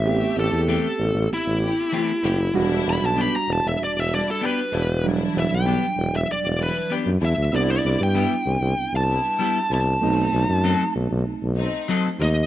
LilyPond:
<<
  \new Staff \with { instrumentName = "Lead electric guitar" } { \time 4/4 \key e \minor \tempo 4 = 96 e''8 a'4. e'2 | r8 b''16 a''16 b''16 ais''16 a''16 e''16 d''16 e''16 d''16 a'16 b'4 | r8 e''16 g''4 e''16 d''8 b'8 r8 e''8 | d''16 d''8 g''4. a''4~ a''16 a''8~ |
a''4. r2 dis''8 | }
  \new Staff \with { instrumentName = "String section" } { \time 4/4 \key e \minor <a g'>4 r4. <a e' g'>8 r8 <a c' g'>16 r16 | <g d' e'>4 r4. <g d' e'>8 r8 <g d' e'>16 r16 | <e d' e'>4 r4. <e d' e'>8 r8 <g d' e'>16 r16 | <b e'>4 r4. <g b e'>8 r8 <b c' e'>16 r16 |
<a c' dis'>4 r4. <a c' dis'>8 r8 <a c' dis'>16 r16 | }
  \new Staff \with { instrumentName = "Clean electric guitar" } { \time 4/4 \key e \minor r4 <e a c' g'>8 r4. <e a c' g'>8 r8 | r4 <b d' g'>8 r4. <b d' g'>8 r8 | r4 <b d' g'>8 r4. <b d' g'>8 r8 | r4 <g b e' g'>8 r4. <g b e' g'>8 r8 |
r4 <fis c' dis' a'>8 r4. <fis c' dis' a'>8 r8 | }
  \new Staff \with { instrumentName = "Reed electric piano" } { \time 4/4 \key e \minor <b c' g'>1 | <g d' fis'>1 | <fis g d'>1 | <b d' e'>1 |
<a c' dis'>1 | }
  \new Staff \with { instrumentName = "Tuba" } { \clef bass \time 4/4 \key e \minor a,,8 a,,16 e,8 r16 a,,16 a,,16 a,,16 a,,8 r8. fis,,8 | e,,8 e,,16 b,,8 r16 e,,16 e,,16 e,,16 e,,8 r8. e,,8~ | e,,8 e,,16 b,,8 r16 e,,16 e,,16 e,,16 e,,8 r8 fis,16 e,16 d,16 | c,8 c,16 g,8 r16 c,16 c,16 c,16 c,8 r8. c,8 |
b,,8 b,,16 fis,8 r16 b,,16 b,,16 b,,16 b,,8 r8. dis,8 | }
>>